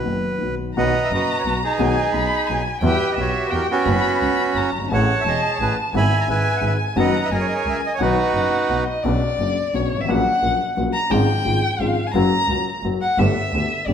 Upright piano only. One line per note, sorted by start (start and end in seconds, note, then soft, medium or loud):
0.03 0.38 F#1 soft
0.03 0.38 F#2 soft
0.03 0.37 D#3 soft
0.03 0.38 F#3 soft
0.03 0.39 B3 soft
0.03 0.39 F#4 soft
0.38 0.74 B1 soft
0.38 0.74 B2 soft
0.38 0.73 D#3 soft
0.38 0.74 F#3 soft
0.38 0.74 B3 soft
0.43 0.75 F#4 soft
0.77 0.91 B1 medium
0.77 0.91 B2 medium
0.77 0.91 D#3 medium
0.77 0.91 F#3 medium
0.77 0.91 B3 medium
0.77 0.91 F#4 medium
1.11 1.25 F#1 soft
1.11 1.25 F#2 soft
1.46 1.60 B1 soft
1.46 1.60 B2 soft
1.79 1.94 B1 medium
1.79 1.94 B2 medium
1.79 1.93 D#3 medium
1.79 1.94 G#3 medium
1.79 1.94 B3 medium
1.79 1.94 F#4 medium
2.14 2.28 B1 soft
2.14 2.28 B2 soft
2.50 2.63 B1 medium
2.50 2.63 B2 medium
2.83 2.97 E2 medium
2.83 2.97 E3 medium
2.83 2.97 G3 medium
2.83 2.97 B3 medium
2.83 2.97 F#4 medium
3.17 3.32 B1 soft
3.17 3.32 B2 soft
3.52 3.67 E2 soft
3.52 3.66 E3 soft
3.84 4.00 F#2 medium
3.84 4.00 C#3 medium
3.84 4.00 F#3 medium
3.84 4.00 B3 medium
3.84 4.00 F#4 medium
4.21 4.36 C#2 soft
4.21 4.36 C#3 soft
4.56 4.71 F#2 soft
4.56 4.71 F#3 soft
4.78 4.82 F#1 soft
4.84 4.87 G1 soft
4.88 4.92 G#1 soft
4.88 5.06 A1 medium
4.88 5.06 A2 medium
4.88 5.06 E3 medium
4.88 5.06 A3 medium
4.88 5.06 C#4 medium
4.88 5.06 G#4 medium
5.26 5.40 E1 soft
5.26 5.40 E2 soft
5.60 5.75 A1 soft
5.60 5.74 A2 soft
5.94 6.09 G#1 medium
5.94 6.09 G#2 medium
5.94 6.09 E3 medium
5.94 6.09 G#3 medium
5.94 6.09 B3 medium
5.94 6.09 G#4 medium
6.28 6.43 G#1 soft
6.28 6.43 G#2 medium
6.61 6.77 G#1 soft
6.61 6.77 G#2 medium
6.96 7.12 F#2 medium
6.96 7.11 D#3 medium
6.96 7.12 F#3 medium
6.96 7.11 B3 medium
6.96 7.12 F#4 medium
7.32 7.46 F#2 soft
7.32 7.46 F#3 soft
7.67 7.81 C#2 soft
7.67 7.81 C#3 soft
8.01 8.15 B1 medium
8.01 8.15 B2 medium
8.01 8.15 D#3 medium
8.01 8.15 F#3 medium
8.01 8.15 B3 medium
8.01 8.15 F#4 medium
8.36 8.50 F#1 soft
8.36 8.50 F#2 soft
8.71 8.85 B1 soft
8.71 8.85 B2 soft
9.05 9.20 B1 medium
9.05 9.19 B2 medium
9.05 9.19 C#3 medium
9.05 9.20 F#3 medium
9.05 9.20 B3 medium
9.05 9.20 D4 medium
9.39 9.54 F#1 soft
9.39 9.54 F#2 soft
9.39 9.54 C#3 soft
9.39 9.54 F#3 soft
9.39 9.54 B3 soft
9.39 9.55 D4 soft
9.74 9.89 B1 soft
9.74 9.89 B2 medium
9.74 9.89 C#3 soft
9.74 9.89 F#3 soft
9.74 9.89 B3 soft
9.74 9.89 D4 soft
9.95 10.00 G1 soft
9.95 10.04 G#1 medium
10.04 10.09 A1 medium
10.04 10.23 C#3 medium
10.08 10.23 A#1 medium
10.08 10.23 A#2 medium
10.08 10.23 F#3 medium
10.08 10.23 A#3 medium
10.08 10.23 F#4 medium
10.42 10.57 A#1 medium
10.42 10.57 A#2 soft
10.42 10.57 C#3 soft
10.42 10.57 F#3 soft
10.42 10.57 A#3 soft
10.42 10.57 F#4 soft
10.76 10.91 A#1 medium
10.76 10.91 A#2 medium
10.76 10.91 C#3 soft
10.76 10.91 F#3 soft
10.76 10.91 A#3 soft
10.76 10.91 F#4 soft
11.10 11.25 G#1 medium
11.10 11.25 G#2 medium
11.10 11.25 C#3 medium
11.10 11.25 F3 medium
11.10 11.25 G#3 medium
11.10 11.26 F4 medium
11.44 11.60 G#1 medium
11.44 11.60 G#2 medium
11.44 11.59 C#3 soft
11.44 11.59 F3 soft
11.44 11.59 G#3 soft
11.44 11.60 F4 soft
11.80 11.95 G#1 medium
11.80 11.95 G#2 medium
11.80 11.94 C#3 soft
11.80 11.95 F3 soft
11.80 11.95 G#3 soft
11.80 11.95 F4 soft
12.14 12.29 F#2 medium
12.14 12.29 C#3 medium
12.14 12.29 F#3 medium
12.14 12.29 A#3 medium
12.14 12.29 F#4 medium
12.48 12.63 C#2 medium
12.48 12.64 C#3 soft
12.48 12.63 F#3 soft
12.48 12.63 A#3 soft
12.48 12.64 F#4 soft
12.84 12.98 F#2 soft
12.84 12.99 C#3 soft
12.84 12.99 F#3 medium
12.84 12.99 A#3 soft
12.84 12.99 F#4 medium
13.18 13.33 G1 medium
13.18 13.33 G2 medium
13.18 13.33 D3 medium
13.18 13.33 A3 medium
13.18 13.33 B3 medium
13.18 13.34 G4 medium
13.54 13.68 D2 soft
13.54 13.68 D3 medium
13.54 13.68 A3 soft
13.54 13.69 B3 soft
13.54 13.69 G4 soft
13.88 13.94 G1 medium
13.88 13.94 G2 medium
13.88 13.94 D3 soft
13.88 13.94 A3 soft
13.88 13.94 B3 soft
13.88 13.94 G4 medium